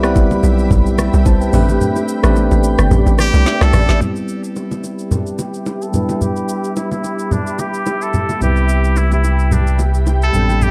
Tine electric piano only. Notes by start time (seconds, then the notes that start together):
Already playing: G3 B3 C4 E4 B4
0.03 G3 B3 C4 E4 B4
0.99 G4 E5
1.26 C5 A5
1.41 B4 G5
1.53 A3 C4 D4 G4 B4
2.23 A3 B3 D4 G4 B4
2.30 C4
3.46 G4 E5
3.74 D5
3.89 G4 E5
3.99 G3 B3 C4 E4
5.92 G3 B3 D4 E4 B4
8.40 G3 B3 C4 E4 B4
10.32 G3 B3 C4 D4 A4